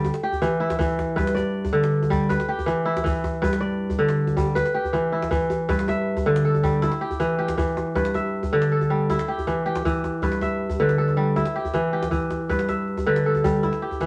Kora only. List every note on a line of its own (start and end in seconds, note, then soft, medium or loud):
0.00 0.14 B4 medium
0.00 0.20 D5 medium
0.23 1.65 G4 medium
0.42 0.78 E3 medium
0.60 2.17 E4 medium
0.79 1.21 E3 medium
1.16 2.34 G2 medium
1.16 2.29 B4 medium
1.35 2.45 D5 medium
1.73 2.34 D3 medium
2.10 2.34 G3 medium
2.29 3.42 B4 medium
2.49 3.90 G4 medium
2.66 3.03 E3 medium
2.85 4.42 E4 medium
3.04 3.48 E3 medium
3.42 4.61 G2 medium
3.42 4.55 B4 medium
3.60 4.71 D5 medium
3.99 4.61 D3 medium
4.37 4.61 G3 medium
4.55 5.69 B4 medium
4.74 6.16 G4 medium
4.93 5.30 E3 medium
5.12 6.69 E4 medium
5.31 5.74 E3 medium
5.69 6.87 G2 medium
5.69 6.92 B4 medium
5.89 6.92 E5 medium
6.26 6.87 D3 medium
6.45 7.77 A4 medium
6.64 6.87 G3 medium
6.82 8.39 E4 medium
7.01 7.38 G4 medium
7.20 7.56 E3 medium
7.39 8.80 G4 medium
7.58 8.01 E3 medium
7.95 9.14 G2 medium
7.95 9.19 B4 medium
8.15 9.18 E5 medium
8.53 9.14 D3 medium
8.72 10.04 A4 medium
8.90 9.14 G3 medium
9.10 10.67 E4 medium
9.28 9.65 G4 medium
9.47 9.84 E3 medium
9.66 11.07 G4 medium
9.85 10.28 E3 medium
10.23 11.41 G2 medium
10.23 10.79 B4 medium
10.42 11.46 E5 medium
10.80 11.41 D3 medium
10.80 12.03 B4 medium
10.98 12.30 A4 medium
11.17 11.41 G3 medium
11.36 12.93 E4 medium
11.56 11.93 G4 medium
11.74 12.10 E3 medium
11.93 13.34 G4 medium
12.11 12.55 E3 medium
12.49 13.68 G2 medium
12.49 13.07 B4 medium
12.69 13.72 E5 medium
13.06 13.68 D3 medium
13.06 14.06 B4 medium
13.26 14.06 A4 medium
13.44 13.68 G3 medium
13.63 14.06 E4 medium
13.82 14.06 G4 medium
14.01 14.06 E3 medium